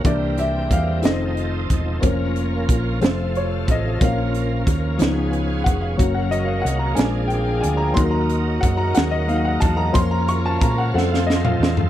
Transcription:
Already playing: A#4
0.04 C2 E3 G3 A#3 C4 D4 G4 C5 D5 G5, kick, closed hi-hat
0.38 E5, closed hi-hat
0.70 E2 F5, kick, closed hi-hat
1.02 F1 D#3 F3 A3 C4 D#4 F4 A4 D#5, snare, closed hi-hat
1.37 closed hi-hat
1.70 E1, kick, closed hi-hat
2.00 F1 F3 A#3 C#4 A#4 C#5 F5, kick, closed hi-hat
2.36 closed hi-hat
2.69 A#1, kick, closed hi-hat
3.00 F1 C3 F3 A3 C4 A4 C5, snare, closed hi-hat
3.35 C#5, closed hi-hat
3.68 A1 D#5, kick, closed hi-hat
4.01 A#1 F3 A#3 C#4 A#4 C#5 F5, kick, closed hi-hat
4.35 closed hi-hat
4.67 D#2, kick, closed hi-hat
4.98 C#2 F3 B3 D#4 G#4 B4 F5, closed hi-hat
5.02 snare
5.33 closed hi-hat
5.64 F1 F#5, kick, closed hi-hat
5.81 F5
5.97 F#1 F#3 A#3 C#4 F#4 A#4 F#5, kick, closed hi-hat
6.15 F#5
6.31 D#5, closed hi-hat
6.45 F5
6.62 C2 F#5
6.66 closed hi-hat
6.79 A#5
6.94 A#1 G#3 A#3 C4 D4 G#4 F5 G#5, closed hi-hat
6.98 F3 D5, snare
7.28 G5, closed hi-hat
7.61 D2 G#5, closed hi-hat
7.77 A#5
7.94 D#2 F#3 A#3 D#4 A#4 F#5 C6, kick, closed hi-hat
7.98 F#4 D#5
8.11 A#5
8.30 closed hi-hat
8.61 F#2 F#5, kick, closed hi-hat
8.77 A#5
8.95 D#2 F#5, snare, closed hi-hat
9.11 D#5
9.27 F#3 A#3 D#4 F5, closed hi-hat
9.45 F#5
9.60 E2 A5, kick, closed hi-hat
9.77 A#5
9.93 F2 F3 A#3 C#4 F4 A#4 C#5 F5 C6, kick, closed hi-hat
9.97 C#4 F4
10.11 A#5
10.28 C#6, closed hi-hat
10.46 A5
10.61 A#2 A#5, kick, closed hi-hat
10.78 F#5
10.94 F2 A3 C4 F4 A4 C5 F#5, snare
11.12 F5, snare
11.27 D#5, snare
11.44 F5, mid tom
11.60 E2, snare
11.77 floor tom

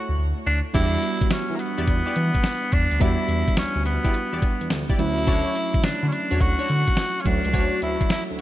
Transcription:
Already playing: A3 E4 F#4 A4 C#5
0.09 D2
0.18 D2
0.47 D2 D4
0.74 E2 G3 B3 D4 E4 F#4 G4 D5, kick, closed hi-hat
1.03 closed hi-hat
1.21 E3, kick, closed hi-hat
1.31 E3 C#4, snare, closed hi-hat
1.50 E3
1.56 A#3, closed hi-hat
1.60 B3
1.78 E2 E4 G4 D5, closed hi-hat
1.88 E2, kick, closed hi-hat
2.06 E4 G4 D5
2.16 E3, closed hi-hat
2.34 kick, closed hi-hat
2.44 snare, closed hi-hat
2.72 E2 D4, kick, closed hi-hat
2.91 D2, closed hi-hat
2.99 E2 G3 B3 D4 E4 F#4 G4 D5, kick, closed hi-hat
3.28 E2, closed hi-hat
3.48 kick, closed hi-hat
3.57 D2 C#4, snare, closed hi-hat
3.76 D2
3.86 B3, closed hi-hat
4.04 E4 G4 D5, kick, closed hi-hat
4.14 closed hi-hat
4.32 E2 E4 G4 D5
4.42 kick, closed hi-hat
4.61 E2, closed hi-hat
4.70 D2, snare, closed hi-hat
4.89 E4 G4 D5, kick
4.98 D2 F#3 A3 C#4 E4, closed hi-hat
5.18 closed hi-hat
5.27 D4 F#4 C#5, kick, closed hi-hat
5.55 closed hi-hat
5.74 D3, kick, closed hi-hat
5.84 D3 D4, snare, closed hi-hat
6.03 D3
6.08 C#4
6.12 D4, closed hi-hat
6.30 E2 D4 F#4 C#5, closed hi-hat
6.40 D2 F#4, kick, closed hi-hat
6.59 D4 F#4 C#5
6.69 D3, closed hi-hat
6.88 kick, closed hi-hat
6.97 snare, closed hi-hat
7.21 F#3 A3 C#4
7.26 D2 D4 F#4 C#5, kick, closed hi-hat
7.45 C#2, closed hi-hat
7.53 D2 D4 F#4 C#5, kick, closed hi-hat
7.82 D2 E4, closed hi-hat
8.01 kick, closed hi-hat
8.10 D2 E4, snare, closed hi-hat
8.30 D2

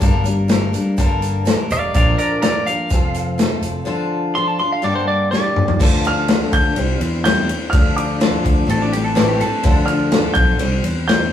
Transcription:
Already playing: D5
0.00 G1 G2 D3 G3 A#3 D4 A#4, kick, closed hi-hat, shaker
0.24 G3 A#3 D4 A#4, closed hi-hat, shaker
0.48 G3 A#3 D4 A#4, snare, closed hi-hat, shaker
0.73 G3 A#3 D4 A#4, closed hi-hat, shaker
0.97 G1 G2 D3 G3 A#3 D4 A#4, kick, closed hi-hat, shaker
1.22 closed hi-hat, shaker
1.45 G3 A#3 D4 A#4, snare, closed hi-hat, shaker
1.70 E1 D5 F5, closed hi-hat, shaker
1.94 A#1 A#2 D3 F3 A#3 D4 A#4 D5 F5, kick, closed hi-hat, shaker
2.18 A#4 D5, closed hi-hat, shaker
2.42 F3 A#3 D4 A#4 D5, snare, closed hi-hat, shaker
2.47 A#4
2.67 A#3 D4 A#4 F5, closed hi-hat, shaker
2.71 F3
2.89 F1 F3, kick, closed hi-hat, shaker
2.94 C4 F4 A4
3.14 closed hi-hat, shaker
3.38 F3 C4 F4 A4, snare, closed hi-hat, shaker
3.61 F1, closed hi-hat, shaker
3.85 D3 F3 D4 F4 A4
4.35 F3 D4 F4 A4 C6
4.48 A5
4.59 D4 F4 A4 C6
4.73 F5
4.82 G2 D3 G3 A#3 D4 G4 D5
4.95 C5
5.08 D5
5.31 G3 A#3 D4 G4 D5, snare
5.56 mid tom
5.68 floor tom
5.79 D2 D3 F3 D4 F4 A4, kick, crash
6.05 F6, ride
6.28 D3 F3 D4 F4 A4, snare, ride
6.52 D2 G6, kick, ride
6.76 C2 G3 C4 E4 C5, ride
7.00 E2 C4 E4 C5, ride
7.24 C3 G3 C4 E4 C5 G6, snare, ride
7.49 C4 E4 C5, ride
7.70 D2 D3 F3 F6, kick, ride
7.74 D4 F4 A4
7.96 D6, ride
8.20 D3 F3 D4 F4 A4, snare, ride
8.44 D2, kick, ride
8.67 A1 A3 C4 E4 A4, ride
8.82 D4
8.92 A3 C4 E4 G4 A4, ride
9.04 A4
9.15 A2 E3 A3 C4 D4 E4 A4, snare, ride
9.28 G4
9.40 A3 C4 E4 A4, ride
9.63 D2 D3 F3 D4 F4 A4, kick, ride
9.86 F6, ride
10.12 D3 F3 D4 F4 A4, snare, ride
10.34 B1 G6, kick, ride
10.59 C2 G3 C4 E4 C5, ride
10.83 E2 E4 C5, ride
10.88 C4
11.08 C3 G3 C4 E4 C5 G6, snare, ride

